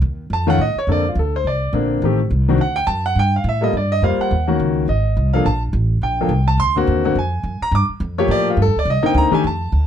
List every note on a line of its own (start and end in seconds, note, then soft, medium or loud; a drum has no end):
0.02 0.29 D#2 loud
0.30 0.57 F2 medium
0.30 0.48 A5 loud
0.47 0.58 D#3 medium
0.47 0.58 A3 medium
0.47 0.58 C#4 medium
0.47 0.58 F4 loud
0.47 0.60 F#5 loud
0.58 0.74 A2 medium
0.58 0.77 D#5 medium
0.75 0.88 C#5 medium
0.75 muted upright bass stroke soft
0.87 1.15 F2 medium
0.87 1.03 D3 medium
0.87 1.03 A#3 medium
0.87 1.03 C4 medium
0.87 1.04 A4 medium
0.92 1.06 D5 loud
1.09 1.18 F4 medium
1.15 1.43 D2 medium
1.15 1.34 A4 medium
1.36 1.46 C5 medium
1.44 1.72 C2 medium
1.44 1.73 D5 medium
1.73 2.01 A#1 medium
1.73 2.02 D3 medium
1.73 2.02 A#3 medium
1.73 2.03 C4 medium
1.73 2.02 D4 medium
2.02 2.29 A1 medium
2.02 2.18 D#3 medium
2.02 2.18 A3 medium
2.02 2.18 C4 medium
2.02 2.19 G4 medium
2.30 2.57 C2 medium
2.48 2.58 D#3 medium
2.48 2.58 C4 medium
2.48 2.59 D4 medium
2.48 2.59 F#4 medium
2.58 2.86 D2 medium
2.58 2.76 F#5 medium
2.76 2.87 G5 loud
2.87 3.15 F#2 medium
2.87 3.03 A5 loud
3.06 3.16 F#5 loud
3.15 3.43 G2 medium
3.15 3.34 G5 loud
3.36 3.46 F5 medium
3.44 3.72 A2 loud
3.49 3.63 E5 medium
3.61 3.72 G3 medium
3.61 3.72 A#3 medium
3.61 3.72 F4 medium
3.61 3.72 A4 medium
3.61 3.74 D#5 medium
3.73 4.01 G2 medium
3.77 3.91 D5 medium
3.92 4.02 D#5 loud
4.02 4.17 F2 medium
4.02 4.31 G3 medium
4.02 4.31 A#3 medium
4.02 4.31 F4 medium
4.02 4.31 C5 medium
4.02 4.19 F5 loud
4.18 4.57 F#5 medium
4.18 muted upright bass stroke soft
4.31 4.58 D#2 medium
4.47 4.85 D#3 medium
4.47 4.85 A#3 medium
4.47 4.85 C#4 medium
4.47 4.85 F#4 medium
4.60 4.87 C#2 medium
4.88 5.15 G#1 medium
4.88 5.30 D#5 medium
5.17 5.44 C2 medium
5.33 5.44 F3 medium
5.33 5.44 A#3 medium
5.33 5.44 D4 medium
5.33 5.45 A4 medium
5.33 5.44 F5 medium
5.45 5.72 A#1 medium
5.45 5.61 A5 loud
5.73 6.00 A1 loud
6.02 6.28 A#1 medium
6.02 6.44 G5 medium
6.21 6.30 F3 medium
6.21 6.30 A#3 medium
6.21 6.30 D4 medium
6.21 6.30 A4 medium
6.29 6.57 C2 medium
6.48 6.58 A5 loud
6.57 6.85 D2 medium
6.57 6.75 C6 loud
6.76 7.02 D3 medium
6.76 7.03 A#3 medium
6.76 7.03 C4 medium
6.76 7.03 F#4 medium
6.87 7.15 D#2 loud
7.05 7.15 D3 medium
7.05 7.15 A#3 medium
7.05 7.15 C4 medium
7.05 7.15 F#4 medium
7.15 7.43 F2 medium
7.15 7.59 G#5 medium
7.43 7.59 F#2 medium
7.61 7.73 A#5 loud
7.61 muted upright bass stroke soft
7.71 7.87 G2 loud
7.71 7.84 D6 loud
7.89 muted upright bass stroke soft
8.00 8.27 F2 loud
8.18 8.56 F3 medium
8.18 8.56 A3 medium
8.18 8.56 A#3 medium
8.18 8.56 G4 medium
8.18 8.29 C#5 medium
8.28 8.56 A2 medium
8.28 8.47 D5 loud
8.50 8.59 F4 medium
8.57 8.68 G2 medium
8.62 8.76 A4 loud
8.66 8.75 F2 medium
8.76 8.85 D2 medium
8.76 8.88 D5 loud
8.85 9.01 C2 medium
8.90 9.05 D#5 medium
9.03 9.30 D3 medium
9.03 9.30 A#3 medium
9.03 9.30 C4 medium
9.03 9.30 D#4 medium
9.03 9.16 G5 loud
9.03 muted upright bass stroke soft
9.14 9.30 D2 loud
9.14 9.33 A#5 loud
9.31 9.42 D#3 medium
9.31 9.42 A3 medium
9.31 9.42 D4 medium
9.31 9.43 G4 medium
9.31 9.44 G#5 loud
9.31 muted upright bass stroke soft
9.44 9.71 F2 medium
9.44 9.87 A5 loud
9.72 9.87 D2 medium